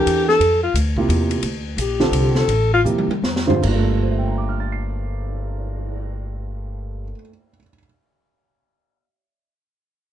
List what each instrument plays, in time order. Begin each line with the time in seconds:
Already playing: grand piano E3 D4 G4 A4 A#4, alto saxophone G4
0.06 upright bass E2, ride
0.28 alto saxophone A4, snare
0.40 upright bass F2, ride
0.63 alto saxophone F4
0.74 upright bass D2, hi-hat pedal, ride
0.97 grand piano C3 A#3 E4 F4 G4, kick
1.08 upright bass E2, ride
1.31 ride
1.42 upright bass D2, ride
1.77 upright bass A#1, hi-hat pedal, ride
1.81 alto saxophone G4
2.00 grand piano D3 G3 C4 F4 A4, snare
2.11 upright bass C2, ride
2.35 alto saxophone A4, snare
2.48 upright bass A1, ride
2.73 alto saxophone F4
2.84 upright bass E2, grand piano C3 F3 A#3 E4 G4, hi-hat pedal, mid tom
2.98 high tom
3.07 muted upright bass stroke, high tom
3.22 upright bass F2, snare
3.36 snare
3.47 grand piano G2 D3 G3 C4 F4 C5, floor tom
3.57 grand piano G3
3.63 upright bass G1, grand piano A#3, kick, crash
3.69 grand piano F4
3.75 grand piano A3
3.88 cymbal swell
4.02 grand piano C5
4.10 grand piano E5
4.18 grand piano G5
4.28 grand piano A#5
4.38 grand piano D6
4.49 grand piano F6
4.60 grand piano A6
4.72 grand piano C7